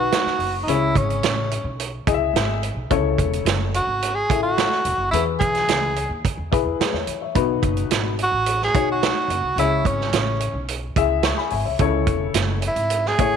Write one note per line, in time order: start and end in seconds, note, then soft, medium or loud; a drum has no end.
0.00 0.41 D#4 medium
0.00 0.41 F#4 medium
0.00 0.57 F#4 loud
0.00 0.41 B4 medium
0.12 snare loud
0.12 closed hi-hat medium
0.25 muted upright bass stroke soft
0.25 snare soft
0.39 0.62 F#1 medium
0.39 open hi-hat medium
0.63 0.71 D#4 medium
0.67 0.91 C#2 loud
0.67 1.48 C#3 medium
0.67 1.43 E4 medium
0.67 0.99 E4 medium
0.67 1.43 G#4 medium
0.67 1.44 C#5 medium
0.67 closed hi-hat medium
0.95 1.19 G#1 medium
0.95 1.80 C#4 medium
0.95 kick medium
0.95 closed hi-hat medium
1.10 closed hi-hat soft
1.23 1.58 A1 medium
1.23 snare loud
1.23 closed hi-hat loud
1.51 closed hi-hat medium
1.64 1.99 B1 medium
1.80 closed hi-hat medium
2.07 2.30 C#2 medium
2.07 2.63 E4 medium
2.07 2.63 G#4 medium
2.07 2.14 D#5 medium
2.07 kick loud
2.07 closed hi-hat medium
2.14 2.67 E5 loud
2.33 2.69 G#1 medium
2.33 snare loud
2.33 closed hi-hat medium
2.63 closed hi-hat medium
2.75 2.87 B1 medium
2.90 3.14 C#2 medium
2.90 3.70 C#3 medium
2.90 3.65 E4 medium
2.90 3.66 A4 medium
2.90 3.66 C#5 medium
2.90 kick loud
2.90 closed hi-hat medium
3.18 3.41 E1 medium
3.18 kick medium
3.18 closed hi-hat medium
3.33 closed hi-hat medium
3.45 3.80 F#1 medium
3.45 snare loud
3.45 closed hi-hat loud
3.74 4.16 F#4 medium
3.74 closed hi-hat medium
3.87 4.22 G#1 medium
4.02 closed hi-hat medium
4.15 4.42 G#4 medium
4.30 4.64 A1 medium
4.30 4.86 E4 medium
4.30 4.86 A4 medium
4.30 4.87 E5 medium
4.30 kick loud
4.30 closed hi-hat medium
4.43 5.09 F#4 medium
4.58 snare loud
4.58 closed hi-hat medium
4.72 snare soft
4.85 4.97 E1 medium
4.85 closed hi-hat medium
4.98 5.10 F#1 medium
5.11 5.36 E2 loud
5.11 5.93 E3 medium
5.11 5.24 E4 medium
5.11 5.88 E4 medium
5.11 5.88 G#4 medium
5.11 5.88 B4 medium
5.11 closed hi-hat medium
5.40 5.64 B1 medium
5.40 6.20 G#4 loud
5.40 kick medium
5.40 closed hi-hat medium
5.55 snare soft
5.55 closed hi-hat soft
5.68 6.03 C#2 medium
5.68 snare loud
5.68 closed hi-hat loud
5.96 closed hi-hat medium
6.09 6.21 D#2 medium
6.25 kick medium
6.25 closed hi-hat medium
6.38 6.49 E2 medium
6.52 6.64 B1 medium
6.52 7.08 E4 medium
6.52 6.79 G#4 medium
6.52 6.79 B4 medium
6.52 kick loud
6.52 closed hi-hat medium
6.65 6.77 E2 medium
6.80 6.94 G#4 medium
6.80 6.93 B4 medium
6.80 muted upright bass stroke soft
6.80 snare loud
6.80 closed hi-hat medium
6.93 7.05 E2 medium
6.93 7.20 C#5 medium
6.93 snare soft
7.07 7.31 E3 medium
7.07 closed hi-hat medium
7.21 7.48 C#5 medium
7.21 7.48 E5 medium
7.35 7.58 B1 loud
7.35 8.15 B2 medium
7.35 8.10 D#4 medium
7.35 8.10 F#4 medium
7.35 8.10 B4 medium
7.35 kick loud
7.35 closed hi-hat medium
7.62 7.86 F#1 medium
7.62 kick medium
7.62 closed hi-hat medium
7.77 closed hi-hat soft
7.91 8.25 G#1 medium
7.91 snare loud
7.91 closed hi-hat loud
8.19 closed hi-hat medium
8.23 8.60 F#4 loud
8.32 8.67 A1 medium
8.46 closed hi-hat medium
8.62 8.88 G#4 loud
8.62 snare soft
8.75 9.09 B1 medium
8.75 9.31 D#4 medium
8.75 9.31 F#4 medium
8.75 9.31 C#5 medium
8.75 kick loud
8.75 closed hi-hat medium
8.92 9.55 F#4 medium
9.03 snare loud
9.03 closed hi-hat medium
9.28 9.40 F#1 medium
9.28 closed hi-hat medium
9.42 9.54 C2 medium
9.56 9.80 C#2 medium
9.56 10.38 C#3 medium
9.56 10.33 E4 medium
9.56 9.88 E4 medium
9.56 10.33 G#4 medium
9.56 10.33 C#5 medium
9.56 closed hi-hat medium
9.85 10.08 G#1 medium
9.85 10.70 C#4 medium
9.85 kick medium
9.85 closed hi-hat medium
10.01 snare soft
10.12 10.47 A1 medium
10.12 snare loud
10.12 closed hi-hat loud
10.40 closed hi-hat medium
10.54 10.89 B1 medium
10.68 closed hi-hat medium
10.96 11.31 C#2 medium
10.96 11.53 E4 medium
10.96 11.53 G#4 medium
10.96 11.25 E5 loud
10.96 kick loud
10.96 closed hi-hat medium
11.23 11.38 C#6 medium
11.23 snare loud
11.23 closed hi-hat medium
11.38 11.50 G#5 soft
11.38 11.51 B5 medium
11.38 snare soft
11.50 11.63 G#1 medium
11.50 11.64 E5 medium
11.50 11.65 G#5 medium
11.50 open hi-hat soft
11.66 11.78 C2 medium
11.66 11.80 C#5 medium
11.66 11.92 E5 medium
11.79 12.03 C#2 loud
11.79 12.60 C#3 medium
11.79 12.55 E4 medium
11.79 12.55 A4 medium
11.79 12.56 C#5 loud
11.79 kick loud
11.79 closed hi-hat medium
12.07 12.30 E1 medium
12.07 kick medium
12.07 closed hi-hat medium
12.34 12.70 F#1 loud
12.34 snare loud
12.34 closed hi-hat loud
12.62 closed hi-hat medium
12.67 13.09 E4 medium
12.76 13.11 G#1 medium
12.76 closed hi-hat soft
12.90 closed hi-hat medium
13.06 13.37 G#4 loud
13.06 snare soft
13.18 13.37 A1 medium
13.18 13.37 A3 medium
13.18 13.37 E4 medium
13.18 13.37 C#5 medium
13.18 kick loud
13.18 closed hi-hat medium